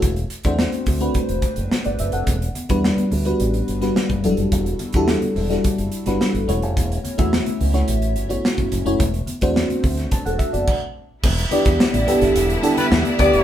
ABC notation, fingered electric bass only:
X:1
M:4/4
L:1/16
Q:1/4=107
K:Edor
V:1 name="Fingered electric bass" clef=bass
E,,,2 z E,,2 z D,,2 z E,,, z F,,, z G,,, F,,, =F,,, | E,,,2 z E,,2 z D,,2 A,,,2 G,,,2 z F,,, E,,, =F,,, | E,,,2 z E,,2 z E,,,2 z F,,, z G,,, z G,,, E,,, =F,,, | E,,,2 z E,,2 z C,,2 A,,,2 G,,,2 z F,,, F,,, =F,,, |
E,,,2 z E,,2 z D,,2 z E,,, z F,,, z4 | E,,,2 z E,, z A,,, z G,,, E,,,2 z2 E,, z D,, =F,,, |]